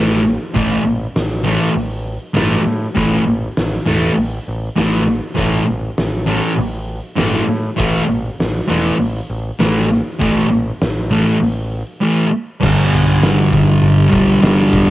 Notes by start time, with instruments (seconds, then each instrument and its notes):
Already playing: picked electric bass A1, distorted electric guitar A2 E3 A3
0.54 picked electric bass A1, distorted electric guitar A2 E3 A3, kick, open hi-hat
0.86 picked electric bass A1
1.16 picked electric bass A1, snare, open hi-hat
1.32 snare
1.44 distorted electric guitar A2 E3 A3
1.76 picked electric bass A1, open hi-hat
2.34 picked electric bass G1, distorted electric guitar A2 E3 A3, snare, open hi-hat
2.67 picked electric bass A2
2.95 picked electric bass A1, distorted electric guitar A2 E3 A3, kick, open hi-hat
3.27 picked electric bass A1
3.57 picked electric bass A1, snare, open hi-hat
3.72 snare
3.86 picked electric bass E1, distorted electric guitar A2 E3 A3
4.18 picked electric bass A1, open hi-hat
4.48 picked electric bass A1
4.76 picked electric bass A1, distorted electric guitar A2 E3 A3, snare, open hi-hat
5.35 picked electric bass A1, distorted electric guitar A2 E3 A3, kick, open hi-hat
5.69 picked electric bass A1
5.98 picked electric bass A1, snare, open hi-hat
6.26 distorted electric guitar A2 E3 A3
6.58 picked electric bass A1, open hi-hat
7.16 picked electric bass G1, distorted electric guitar A2 E3 A3, snare, open hi-hat
7.48 picked electric bass A2
7.77 picked electric bass A1, distorted electric guitar A2 E3 A3, kick, open hi-hat
8.09 picked electric bass A1
8.40 picked electric bass A1, snare, open hi-hat
8.57 snare
8.68 picked electric bass E1, distorted electric guitar A2 E3 A3
8.99 picked electric bass A1, open hi-hat
9.30 picked electric bass A1
9.59 picked electric bass A1, distorted electric guitar A2 E3 A3, snare, open hi-hat
10.19 picked electric bass A1, distorted electric guitar A2 E3 A3, kick, open hi-hat
10.50 picked electric bass A1
10.81 picked electric bass A1, snare, open hi-hat
11.11 distorted electric guitar A2 E3 A3
11.41 picked electric bass A1, open hi-hat
12.01 distorted electric guitar A2 E3 A3
12.61 picked electric bass G1, distorted electric guitar G2 D3, kick, crash
12.65 distorted electric guitar G3
12.94 picked electric bass B1
13.22 picked electric bass G1, snare, open hi-hat
13.53 picked electric bass G1, kick
13.82 picked electric bass G1, open hi-hat
14.10 picked electric bass B1, distorted electric guitar D3 G3, kick
14.15 distorted electric guitar G2
14.41 picked electric bass G1, distorted electric guitar G2 D3, snare, open hi-hat
14.45 distorted electric guitar G3
14.73 picked electric bass E1, kick